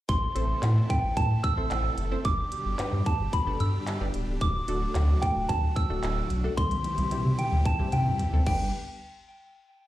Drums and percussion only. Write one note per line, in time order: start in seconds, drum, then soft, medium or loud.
0.09 kick loud
0.09 closed hi-hat medium
0.36 closed hi-hat medium
0.63 clap loud
0.63 closed hi-hat loud
0.90 kick loud
0.90 closed hi-hat medium
1.17 kick medium
1.17 closed hi-hat medium
1.44 kick medium
1.44 closed hi-hat medium
1.71 clap loud
1.71 closed hi-hat medium
1.98 closed hi-hat medium
2.25 kick loud
2.25 closed hi-hat medium
2.52 closed hi-hat medium
2.79 clap loud
2.79 closed hi-hat loud
3.06 kick medium
3.06 closed hi-hat medium
3.33 kick medium
3.33 closed hi-hat medium
3.60 closed hi-hat medium
3.87 clap loud
3.87 closed hi-hat medium
4.14 closed hi-hat medium
4.41 kick loud
4.41 closed hi-hat medium
4.68 closed hi-hat medium
4.95 clap loud
4.95 closed hi-hat loud
5.22 kick loud
5.22 closed hi-hat medium
5.49 kick medium
5.49 closed hi-hat medium
5.76 kick medium
5.76 closed hi-hat medium
6.03 clap loud
6.03 closed hi-hat medium
6.30 closed hi-hat medium
6.58 kick loud
6.58 closed hi-hat medium
6.58 high tom medium
6.71 closed hi-hat medium
6.71 high tom medium
6.84 closed hi-hat medium
6.84 high tom medium
6.98 closed hi-hat medium
6.98 high tom medium
7.11 closed hi-hat loud
7.11 mid tom medium
7.25 mid tom medium
7.39 closed hi-hat medium
7.39 mid tom medium
7.52 mid tom medium
7.65 kick medium
7.65 closed hi-hat medium
7.65 mid tom medium
7.79 mid tom medium
7.92 closed hi-hat medium
7.92 mid tom medium
8.06 mid tom medium
8.19 closed hi-hat medium
8.19 floor tom loud
8.33 floor tom medium
8.46 kick loud
8.46 crash medium